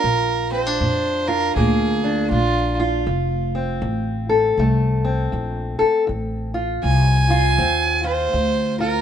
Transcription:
Already playing: steel-string acoustic guitar F4, fiddle A#4
0.04 upright bass A#1, steel-string acoustic guitar A#2
0.52 steel-string acoustic guitar C4, fiddle C5
0.66 steel-string acoustic guitar D4
0.80 upright bass F2, steel-string acoustic guitar A#2
1.28 steel-string acoustic guitar F4, fiddle A#4
1.56 upright bass D2, steel-string acoustic guitar A#2 A#3, fiddle G#4
2.04 steel-string acoustic guitar D4
2.30 upright bass A#1, steel-string acoustic guitar A#2, fiddle F4
2.80 steel-string acoustic guitar F4
3.07 upright bass F1, steel-string acoustic guitar F2
3.55 steel-string acoustic guitar C4
3.82 upright bass A1, steel-string acoustic guitar F2
4.29 steel-string acoustic guitar A4
4.57 upright bass C2, steel-string acoustic guitar F2 A3
5.04 steel-string acoustic guitar C4
5.32 upright bass A#1, steel-string acoustic guitar F2
5.79 steel-string acoustic guitar A4, muted upright bass stroke
6.07 upright bass A1, steel-string acoustic guitar F2
6.54 steel-string acoustic guitar F4
6.83 upright bass C2, steel-string acoustic guitar F2, fiddle G#5
7.30 steel-string acoustic guitar F4
7.57 upright bass D#2, steel-string acoustic guitar F2 C4
8.04 steel-string acoustic guitar F4, fiddle C5
8.33 upright bass D2, steel-string acoustic guitar F2
8.80 steel-string acoustic guitar F4, fiddle A#4

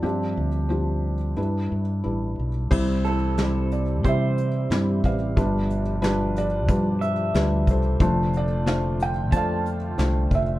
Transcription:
0.02 felt piano G1 G2 F3 C4 D4 F4 G4 D5, fingered electric bass G2
0.37 fingered electric bass D2
0.69 felt piano F3 C4 D4 F4 G4 C5
1.37 felt piano G1 G2 G3 D4 E4 B4, fingered electric bass G2
1.72 fingered electric bass G2
2.04 fingered electric bass A1, felt piano G3 D4 E4 B4
2.39 fingered electric bass B1
2.71 felt piano C2 C3 G3 C4 E4 C5, fingered electric bass C2, analog synth pad E3 C4 G4, kick, crash
3.05 felt piano E4 G4 C5, clean electric guitar A4, closed hi-hat
3.38 felt piano G3 C4 E4 C5, snare, closed hi-hat
3.71 felt piano D5, closed hi-hat
4.04 fingered electric bass C3, felt piano G3 C4 E4 C5, clean electric guitar C5, kick, closed hi-hat
4.08 felt piano G4 E5
4.38 closed hi-hat
4.70 fingered electric bass G2, felt piano G3 C4 E4 C5, snare, closed hi-hat
5.04 fingered electric bass A1, felt piano B4 D5 F5, kick, closed hi-hat
5.36 fingered electric bass G1, felt piano G1 G2 G3 D4 F4 B4, analog synth pad B2 F3, kick, closed hi-hat
5.70 closed hi-hat
6.02 felt piano G3 D4 F4 B4, snare, closed hi-hat
6.36 felt piano D5, closed hi-hat
6.68 fingered electric bass G2, felt piano G3 D4 F4 B4, kick, closed hi-hat
7.01 clean electric guitar E5, closed hi-hat
7.34 fingered electric bass D2, felt piano G3 D4 F4 B4, snare, closed hi-hat
7.67 fingered electric bass C2, felt piano A4 C5, kick, closed hi-hat
8.00 fingered electric bass F1, felt piano F1 F2 A3 D4 F4 C5, analog synth pad D3 A3 F4, kick, closed hi-hat
8.33 felt piano D5, closed hi-hat
8.66 felt piano A3 D4 F4 C5 F5, snare, closed hi-hat
9.00 felt piano G5, closed hi-hat
9.32 fingered electric bass F2, felt piano A3 D4 F4 C5, clean electric guitar A5, kick, closed hi-hat
9.36 felt piano A4 D5 F5
9.66 closed hi-hat
9.98 fingered electric bass C2, felt piano A3 D4 F4 C5, snare, closed hi-hat
10.31 fingered electric bass F1, felt piano E5, kick, closed hi-hat

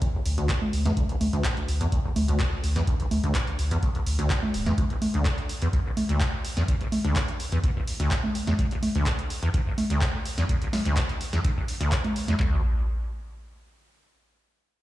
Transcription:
0.02 acid bass D2, kick, closed hi-hat
0.14 acid bass D1
0.26 sub bass D2, open hi-hat
0.38 acid bass D2, closed hi-hat
0.49 acid bass D3, kick, clap, closed hi-hat
0.62 low conga
0.73 sub bass D2, open hi-hat
0.85 acid bass E2, snare, closed hi-hat, low conga
0.97 acid bass D2, kick, closed hi-hat
1.09 acid bass D1, closed hi-hat
1.21 sub bass D2, open hi-hat, low conga
1.33 sub bass D2, acid bass D2, closed hi-hat
1.44 acid bass D3, kick, clap, closed hi-hat
1.57 closed hi-hat
1.68 sub bass D2, open hi-hat
1.81 acid bass E2, closed hi-hat
1.92 acid bass D2, kick, closed hi-hat
2.04 acid bass D1
2.16 sub bass D2, open hi-hat, low conga
2.28 acid bass D2, closed hi-hat
2.40 acid bass D3, kick, clap, closed hi-hat
2.64 sub bass D2, open hi-hat
2.76 acid bass E2, snare, closed hi-hat
2.87 acid bass D2, kick, closed hi-hat
3.00 acid bass D1, closed hi-hat
3.11 sub bass D2, open hi-hat, low conga
3.24 acid bass D2, sub bass D2, closed hi-hat
3.35 acid bass D3, kick, clap, closed hi-hat
3.47 closed hi-hat
3.59 sub bass D2, open hi-hat
3.71 acid bass E2, closed hi-hat
3.83 acid bass D2, kick, closed hi-hat
3.95 acid bass D1, closed hi-hat
4.06 sub bass D2, open hi-hat
4.19 acid bass D2, closed hi-hat
4.30 acid bass D3, kick, clap, closed hi-hat
4.43 low conga
4.54 sub bass D1, open hi-hat
4.66 acid bass E2, snare, closed hi-hat, low conga
4.78 acid bass D2, kick, closed hi-hat
4.90 acid bass D1, closed hi-hat
5.02 open hi-hat, low conga
5.14 acid bass D2, closed hi-hat
5.25 acid bass D3, kick, clap, closed hi-hat
5.38 closed hi-hat
5.49 open hi-hat
5.62 acid bass E2, closed hi-hat
5.73 acid bass D2, kick, closed hi-hat
5.85 acid bass D1
5.97 open hi-hat, low conga
6.09 acid bass D2, closed hi-hat
6.20 acid bass D3, kick, clap, closed hi-hat
6.45 open hi-hat
6.57 acid bass E2, snare, closed hi-hat
6.68 acid bass D2, kick, closed hi-hat
6.81 acid bass D1, closed hi-hat
6.92 open hi-hat, low conga
7.04 acid bass D2, closed hi-hat
7.16 acid bass D3, kick, clap, closed hi-hat
7.28 closed hi-hat
7.40 open hi-hat
7.52 acid bass E2, closed hi-hat
7.64 acid bass D2, kick, closed hi-hat
7.76 acid bass D1
7.87 open hi-hat
8.00 acid bass D2, closed hi-hat
8.11 acid bass D3, kick, clap, closed hi-hat
8.24 low conga
8.35 open hi-hat
8.47 acid bass E2, snare, closed hi-hat, low conga
8.59 acid bass D2, kick, closed hi-hat
8.71 acid bass D1, closed hi-hat
8.83 open hi-hat, low conga
8.95 acid bass D2, closed hi-hat
9.06 acid bass D3, kick, clap, closed hi-hat
9.19 closed hi-hat
9.30 open hi-hat
9.43 acid bass E2, closed hi-hat
9.54 acid bass D2, kick, closed hi-hat
9.66 acid bass D1
9.78 open hi-hat, low conga
9.90 acid bass D2, closed hi-hat
10.01 acid bass D3, kick, clap, closed hi-hat
10.25 open hi-hat
10.38 acid bass E2, snare, closed hi-hat
10.49 acid bass D2, kick, closed hi-hat
10.62 acid bass D1, closed hi-hat
10.73 snare, open hi-hat, low conga
10.85 acid bass D2, closed hi-hat
10.97 acid bass D3, kick, clap, closed hi-hat
11.09 closed hi-hat
11.21 open hi-hat
11.33 acid bass E2, snare, closed hi-hat
11.45 acid bass D2, kick, closed hi-hat
11.57 acid bass D1
11.68 open hi-hat
11.81 acid bass D2, closed hi-hat
11.92 acid bass D3, kick, clap, closed hi-hat
12.04 closed hi-hat, low conga
12.16 open hi-hat
12.28 acid bass E2, snare, closed hi-hat, low conga
12.40 acid bass D2, sub bass D2, kick, clap, floor tom

